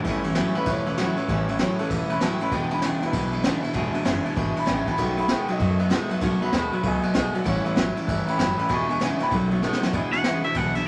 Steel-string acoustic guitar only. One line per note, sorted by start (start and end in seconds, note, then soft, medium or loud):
0.06 0.25 A2 medium
0.06 0.26 E3 loud
0.06 0.25 G3 loud
0.06 0.24 C#4 loud
0.06 0.23 E4 loud
0.24 0.34 G3 medium
0.24 0.34 C#4 medium
0.24 0.35 E4 medium
0.35 0.55 A2 medium
0.35 0.55 E3 medium
0.35 0.55 G3 medium
0.35 0.55 C#4 loud
0.35 0.55 E4 loud
0.56 0.67 G3 medium
0.56 0.67 C#4 medium
0.56 0.67 E4 medium
0.67 0.87 E3 medium
0.67 0.87 G3 medium
0.67 0.86 C#4 medium
0.67 0.84 E4 medium
0.86 0.98 G3 soft
0.86 0.98 C#4 soft
0.86 0.97 E4 medium
0.98 1.18 A2 medium
0.98 1.18 E3 medium
0.98 1.17 G3 medium
0.98 1.15 C#4 medium
0.98 1.15 E4 medium
1.16 1.28 G3 soft
1.16 1.28 C#4 medium
1.16 1.28 E4 medium
1.28 1.48 A2 medium
1.28 1.48 E3 medium
1.28 1.48 G3 medium
1.28 1.47 C#4 medium
1.28 1.46 E4 medium
1.47 1.58 G3 soft
1.47 1.58 C#4 medium
1.47 1.59 E4 medium
1.59 1.79 A2 medium
1.59 1.79 E3 medium
1.59 1.79 G3 medium
1.59 1.78 C#4 medium
1.59 1.77 E4 medium
1.79 1.89 G3 medium
1.79 1.90 C#4 medium
1.79 1.90 E4 medium
1.90 2.10 E3 medium
1.90 2.10 G3 medium
1.90 2.10 C#4 medium
1.90 2.09 E4 medium
2.10 2.20 G3 soft
2.10 2.20 C#4 soft
2.10 2.21 E4 medium
2.21 2.40 A2 medium
2.21 2.40 E3 medium
2.21 2.41 G3 medium
2.21 2.40 C#4 medium
2.21 2.39 E4 loud
2.40 2.52 G3 soft
2.40 2.52 C#4 soft
2.40 2.52 E4 medium
2.52 2.71 E2 medium
2.52 2.71 B2 medium
2.52 2.72 E3 medium
2.52 2.72 G#3 medium
2.52 2.70 D4 loud
2.52 2.70 E4 medium
2.71 2.82 E3 soft
2.71 2.82 G#3 soft
2.71 2.83 D4 medium
2.71 2.82 E4 medium
2.83 3.02 E2 medium
2.83 3.02 B2 medium
2.83 3.03 E3 medium
2.83 3.02 G#3 medium
2.83 3.02 D4 medium
2.83 3.01 E4 medium
3.02 3.13 E3 soft
3.02 3.13 G#3 soft
3.02 3.14 D4 medium
3.02 3.14 E4 medium
3.14 3.32 E3 medium
3.14 3.32 G#3 medium
3.14 3.31 D4 medium
3.14 3.30 E4 medium
3.31 3.43 E3 soft
3.31 3.43 G#3 medium
3.31 3.44 D4 soft
3.31 3.44 E4 medium
3.44 3.64 E2 medium
3.44 3.64 B2 loud
3.44 3.63 E3 loud
3.44 3.62 G#3 loud
3.44 3.62 D4 loud
3.44 3.61 E4 medium
3.63 3.73 E3 soft
3.63 3.73 G#3 medium
3.63 3.73 D4 medium
3.63 3.73 E4 medium
3.74 3.94 E2 loud
3.74 3.94 B2 loud
3.74 3.93 E3 loud
3.74 3.93 G#3 loud
3.74 3.93 D4 loud
3.74 3.91 E4 medium
3.93 4.04 E3 medium
3.93 4.04 G#3 medium
3.93 4.04 D4 medium
3.93 4.05 E4 medium
4.05 4.25 E2 medium
4.05 4.25 B2 medium
4.05 4.25 E3 medium
4.05 4.25 G#3 medium
4.05 4.25 D4 medium
4.05 4.24 E4 loud
4.25 4.34 E3 medium
4.25 4.35 G#3 medium
4.25 4.36 D4 medium
4.25 4.36 E4 medium
4.36 4.56 E3 medium
4.36 4.56 G#3 medium
4.36 4.55 D4 medium
4.36 4.54 E4 medium
4.56 4.65 E3 soft
4.56 4.65 G#3 soft
4.56 4.66 D4 soft
4.56 4.66 E4 medium
4.65 4.86 E2 medium
4.65 4.86 B2 medium
4.65 4.86 E3 medium
4.65 4.86 G#3 medium
4.65 4.85 D4 medium
4.65 4.84 E4 loud
4.85 4.98 E3 soft
4.85 4.98 G#3 soft
4.85 4.98 D4 medium
4.85 4.98 E4 soft
4.98 5.18 B2 medium
4.98 5.18 D#3 medium
4.98 5.18 A3 medium
4.98 5.17 B3 medium
4.98 5.16 F#4 loud
5.17 5.28 A3 soft
5.17 5.28 B3 soft
5.17 5.28 F#4 medium
5.28 5.48 B2 medium
5.28 5.49 D#3 medium
5.28 5.49 A3 medium
5.28 5.49 B3 medium
5.28 5.48 F#4 medium
5.49 5.59 A3 soft
5.49 5.58 B3 soft
5.49 5.59 F#4 medium
5.59 5.79 D#3 medium
5.59 5.79 A3 medium
5.59 5.78 B3 medium
5.59 5.77 F#4 medium
5.78 5.89 A3 soft
5.78 5.89 B3 medium
5.78 5.89 F#4 medium
5.90 6.10 B2 medium
5.90 6.10 D#3 medium
5.90 6.10 A3 loud
5.90 6.09 B3 medium
5.90 6.08 F#4 medium
6.09 6.21 A3 soft
6.09 6.22 B3 medium
6.09 6.22 F#4 medium
6.22 6.42 B2 medium
6.22 6.42 D#3 medium
6.22 6.42 A3 medium
6.22 6.42 B3 loud
6.22 6.41 F#4 loud
6.42 6.53 A3 soft
6.42 6.54 B3 medium
6.42 6.54 F#4 medium
6.54 6.73 B2 medium
6.54 6.73 D#3 medium
6.54 6.73 A3 medium
6.54 6.73 B3 medium
6.54 6.72 F#4 medium
6.74 6.84 A3 soft
6.74 6.84 B3 medium
6.74 6.85 F#4 medium
6.84 7.04 D#3 medium
6.84 7.03 A3 medium
6.84 7.02 B3 medium
6.84 7.02 F#4 medium
7.03 7.13 A3 soft
7.03 7.14 B3 soft
7.03 7.14 F#4 soft
7.14 7.34 B2 medium
7.14 7.34 D#3 medium
7.14 7.34 A3 medium
7.14 7.33 B3 medium
7.14 7.33 F#4 medium
7.34 7.45 A3 soft
7.34 7.46 B3 medium
7.34 7.45 F#4 medium
7.44 7.65 A2 medium
7.44 7.65 E3 medium
7.44 7.65 G3 medium
7.44 7.64 C#4 loud
7.44 7.63 E4 loud
7.65 7.75 G3 soft
7.65 7.75 C#4 soft
7.65 7.75 E4 medium
7.76 7.96 A2 medium
7.76 7.96 E3 medium
7.76 7.96 G3 medium
7.76 7.96 C#4 medium
7.76 7.94 E4 medium
7.95 8.07 G3 medium
7.95 8.08 C#4 medium
7.95 8.07 E4 medium
8.07 8.27 E3 medium
8.07 8.28 G3 medium
8.07 8.27 C#4 medium
8.07 8.26 E4 medium
8.27 8.37 G3 medium
8.27 8.38 C#4 soft
8.27 8.38 E4 medium
8.38 8.58 A2 medium
8.38 8.58 E3 medium
8.38 8.58 G3 medium
8.38 8.58 C#4 medium
8.38 8.56 E4 medium
8.57 8.69 G3 soft
8.57 8.69 C#4 medium
8.57 8.69 E4 medium
8.68 8.89 E2 medium
8.68 8.89 B2 medium
8.68 8.89 E3 medium
8.68 8.89 G#3 loud
8.68 8.88 D4 medium
8.68 8.88 E4 loud
8.89 9.00 E3 soft
8.89 9.00 G#3 soft
8.89 9.01 D4 medium
8.89 9.01 E4 medium
9.00 9.20 E2 medium
9.00 9.20 B2 medium
9.00 9.20 E3 medium
9.00 9.20 G#3 medium
9.00 9.19 D4 medium
9.00 9.18 E4 medium
9.20 9.31 E3 medium
9.20 9.32 G#3 soft
9.20 9.32 D4 medium
9.20 9.31 E4 medium
9.32 9.51 D#3 medium
9.32 9.52 A3 medium
9.32 9.52 B3 medium
9.32 9.51 F#4 medium
9.52 9.63 A3 medium
9.52 9.63 B3 medium
9.52 9.63 F#4 medium
9.63 9.83 B2 loud
9.63 9.83 D#3 medium
9.63 9.83 A3 loud
9.63 9.82 B3 loud
9.63 9.81 F#4 medium
9.82 9.94 A3 soft
9.82 9.94 B3 medium
9.82 9.94 F#4 medium
9.94 10.13 E2 medium
9.94 10.13 B2 medium
9.94 10.14 E3 medium
9.94 10.14 G#3 loud
9.94 10.14 D4 medium
9.94 10.13 E4 loud
10.14 10.24 E3 soft
10.14 10.25 G#3 soft
10.14 10.24 D4 medium
10.14 10.25 E4 medium
10.25 10.45 E2 medium
10.25 10.45 B2 medium
10.25 10.45 E3 medium
10.25 10.43 G#3 medium
10.25 10.43 D4 medium
10.25 10.43 E4 medium
10.44 10.54 E3 soft
10.44 10.55 G#3 medium
10.44 10.56 D4 medium
10.44 10.56 E4 medium
10.55 10.75 E3 medium
10.55 10.75 G#3 medium
10.55 10.75 D4 medium
10.55 10.74 E4 medium
10.75 10.87 E3 soft
10.75 10.87 G#3 soft
10.75 10.87 D4 soft
10.75 10.87 E4 soft